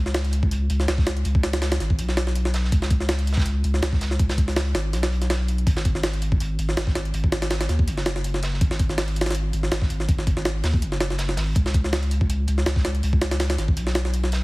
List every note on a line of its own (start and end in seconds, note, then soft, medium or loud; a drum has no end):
0.00 0.68 C#2 loud
0.06 snare soft
0.14 snare loud
0.14 closed hi-hat medium
0.14 open hi-hat medium
0.24 closed hi-hat soft
0.33 closed hi-hat medium
0.43 kick medium
0.51 closed hi-hat medium
0.70 0.87 C#2 loud
0.70 closed hi-hat medium
0.80 snare soft
0.88 1.24 C#2 medium
0.88 snare loud
0.88 closed hi-hat medium
0.98 kick medium
0.98 snare soft
1.07 snare loud
1.07 closed hi-hat medium
1.17 closed hi-hat soft
1.25 1.79 C#2 loud
1.25 closed hi-hat medium
1.35 kick medium
1.43 snare loud
1.43 closed hi-hat medium
1.53 snare loud
1.53 closed hi-hat medium
1.62 snare loud
1.62 closed hi-hat medium
1.72 snare loud
1.72 closed hi-hat medium
1.72 closed hi-hat soft
1.80 2.00 G#1 medium
1.80 snare soft
1.80 closed hi-hat medium
1.90 kick medium
1.99 2.71 B1 medium
1.99 closed hi-hat medium
2.08 snare soft
2.17 snare loud
2.17 closed hi-hat medium
2.27 snare medium
2.35 closed hi-hat medium
2.45 snare medium
2.54 snare loud
2.54 closed hi-hat medium
2.65 snare soft
2.72 3.63 C#2 loud
2.72 kick loud
2.72 closed hi-hat medium
2.82 snare medium
2.90 kick loud
2.90 closed hi-hat medium
3.00 snare soft
3.09 snare loud
3.09 closed hi-hat medium
3.09 open hi-hat medium
3.19 closed hi-hat soft
3.27 closed hi-hat medium
3.27 open hi-hat medium
3.33 snare medium
3.33 open hi-hat medium
3.37 kick medium
3.37 snare medium
3.37 open hi-hat medium
3.40 snare medium
3.40 open hi-hat medium
3.46 closed hi-hat medium
3.64 3.81 C#2 loud
3.64 closed hi-hat medium
3.74 snare soft
3.82 4.18 C#2 medium
3.82 snare loud
3.82 closed hi-hat medium
3.93 kick medium
3.93 snare soft
4.01 snare medium
4.01 closed hi-hat medium
4.11 snare soft
4.11 closed hi-hat soft
4.19 4.73 C#2 loud
4.19 kick loud
4.19 closed hi-hat medium
4.29 snare soft
4.29 snare loud
4.29 closed hi-hat medium
4.38 kick loud
4.38 closed hi-hat medium
4.48 snare soft
4.48 closed hi-hat medium
4.56 snare loud
4.56 closed hi-hat medium
4.66 closed hi-hat soft
4.75 4.95 G#1 medium
4.75 snare loud
4.75 closed hi-hat medium
4.93 5.65 B1 medium
4.93 snare soft
4.93 closed hi-hat medium
5.02 snare soft
5.02 snare loud
5.02 closed hi-hat medium
5.12 closed hi-hat medium
5.22 snare soft
5.22 closed hi-hat medium
5.30 snare loud
5.30 closed hi-hat medium
5.48 closed hi-hat medium
5.58 closed hi-hat soft
5.67 6.57 G#1 loud
5.67 kick loud
5.67 closed hi-hat medium
5.67 closed hi-hat loud
5.76 snare medium
5.85 kick loud
5.85 closed hi-hat medium
5.95 snare soft
6.03 snare loud
6.03 closed hi-hat medium
6.03 open hi-hat medium
6.13 closed hi-hat soft
6.22 closed hi-hat medium
6.32 kick medium
6.40 closed hi-hat medium
6.40 closed hi-hat loud
6.59 6.75 G#1 loud
6.59 closed hi-hat medium
6.69 snare soft
6.77 7.13 G#1 medium
6.77 snare loud
6.77 closed hi-hat medium
6.87 kick medium
6.87 snare soft
6.95 snare loud
6.95 closed hi-hat medium
7.05 closed hi-hat soft
7.14 7.68 G#1 loud
7.14 closed hi-hat medium
7.14 closed hi-hat loud
7.24 kick medium
7.32 snare loud
7.32 closed hi-hat medium
7.42 snare loud
7.42 closed hi-hat medium
7.50 snare loud
7.50 closed hi-hat medium
7.61 snare loud
7.61 closed hi-hat medium
7.61 closed hi-hat soft
7.69 7.89 D#2 medium
7.69 snare soft
7.69 closed hi-hat medium
7.79 kick medium
7.88 8.60 F#1 medium
7.88 closed hi-hat medium
7.97 snare soft
8.06 snare loud
8.06 closed hi-hat medium
8.16 snare soft
8.24 closed hi-hat medium
8.26 closed hi-hat medium
8.34 snare medium
8.42 snare loud
8.42 closed hi-hat medium
8.53 snare soft
8.61 9.52 G#1 loud
8.61 kick loud
8.61 closed hi-hat medium
8.71 snare medium
8.79 kick loud
8.79 closed hi-hat medium
8.89 snare soft
8.98 snare loud
8.98 closed hi-hat medium
8.98 open hi-hat medium
9.08 closed hi-hat soft
9.16 closed hi-hat medium
9.21 snare medium
9.21 closed hi-hat medium
9.26 snare medium
9.26 closed hi-hat medium
9.31 snare medium
9.31 closed hi-hat medium
9.34 closed hi-hat medium
9.34 closed hi-hat loud
9.53 9.70 G#1 loud
9.53 closed hi-hat medium
9.63 snare soft
9.72 10.07 G#1 medium
9.72 snare loud
9.72 closed hi-hat medium
9.82 kick medium
9.82 snare medium
9.90 closed hi-hat medium
10.00 snare soft
10.09 10.62 G#1 loud
10.09 kick loud
10.09 closed hi-hat medium
10.18 snare soft
10.27 kick medium
10.27 closed hi-hat medium
10.37 snare soft
10.45 snare loud
10.45 closed hi-hat medium
10.64 10.84 D#2 medium
10.64 snare soft
10.64 snare loud
10.64 closed hi-hat medium
10.64 open hi-hat medium
10.74 kick medium
10.82 11.37 F#1 medium
10.82 closed hi-hat medium
10.92 snare soft
11.01 snare loud
11.01 closed hi-hat medium
11.10 snare soft
11.18 snare loud
11.18 closed hi-hat medium
11.29 snare soft
11.37 11.54 G#1 loud
11.37 snare loud
11.37 closed hi-hat medium
11.37 open hi-hat medium
11.55 12.46 C#2 loud
11.55 kick loud
11.55 closed hi-hat medium
11.66 snare medium
11.73 kick loud
11.73 closed hi-hat medium
11.84 snare soft
11.93 snare loud
11.93 closed hi-hat medium
11.93 open hi-hat medium
12.03 closed hi-hat soft
12.11 closed hi-hat medium
12.21 kick medium
12.30 closed hi-hat medium
12.48 12.65 C#2 loud
12.48 closed hi-hat medium
12.58 snare soft
12.66 13.02 C#2 medium
12.66 snare loud
12.66 closed hi-hat medium
12.76 kick loud
12.76 snare medium
12.85 snare loud
12.85 closed hi-hat medium
12.95 closed hi-hat soft
13.03 13.57 C#2 loud
13.03 closed hi-hat medium
13.13 kick medium
13.21 snare loud
13.21 closed hi-hat medium
13.31 snare loud
13.31 closed hi-hat medium
13.40 snare loud
13.40 closed hi-hat medium
13.40 closed hi-hat loud
13.50 snare loud
13.50 closed hi-hat medium
13.50 closed hi-hat soft
13.58 13.78 G#1 medium
13.58 snare soft
13.58 closed hi-hat medium
13.68 kick medium
13.77 14.44 B1 medium
13.77 closed hi-hat medium
13.77 closed hi-hat loud
13.87 snare soft
13.95 snare loud
13.95 closed hi-hat medium
14.05 snare soft
14.14 closed hi-hat medium
14.24 snare medium
14.32 snare loud
14.32 closed hi-hat medium